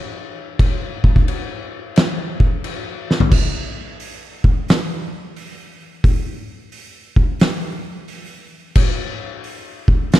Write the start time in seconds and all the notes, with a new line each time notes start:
0.59 kick, crash
1.04 kick
1.16 kick
1.28 crash
1.96 snare, crash
2.40 kick
2.64 crash
3.11 snare
3.20 floor tom
3.32 kick, crash
4.00 open hi-hat
4.44 kick
4.68 snare, open hi-hat
5.36 open hi-hat
6.04 kick, open hi-hat
6.72 open hi-hat
7.16 kick
7.40 snare, open hi-hat
8.08 open hi-hat
8.75 kick, crash
9.44 open hi-hat
9.88 kick
10.12 snare, open hi-hat